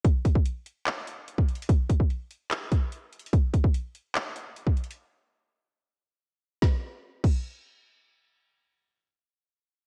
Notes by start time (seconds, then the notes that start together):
0.04 kick, closed hi-hat
0.25 kick, closed hi-hat
0.35 kick
0.46 closed hi-hat
0.66 closed hi-hat
0.87 clap, closed hi-hat
1.07 closed hi-hat
1.28 closed hi-hat
1.38 kick
1.48 closed hi-hat
1.55 closed hi-hat
1.62 closed hi-hat
1.69 kick, closed hi-hat
1.89 kick, closed hi-hat
2.00 kick
2.10 closed hi-hat
2.31 closed hi-hat
2.51 clap, closed hi-hat
2.72 kick, closed hi-hat
2.92 closed hi-hat
3.13 closed hi-hat
3.20 closed hi-hat
3.26 closed hi-hat
3.33 kick, closed hi-hat
3.54 kick, closed hi-hat
3.64 kick
3.74 closed hi-hat
3.95 closed hi-hat
4.16 clap, closed hi-hat
4.36 closed hi-hat
4.57 closed hi-hat
4.67 kick
4.77 closed hi-hat
4.84 closed hi-hat
4.91 closed hi-hat
6.62 kick, snare
7.24 kick, crash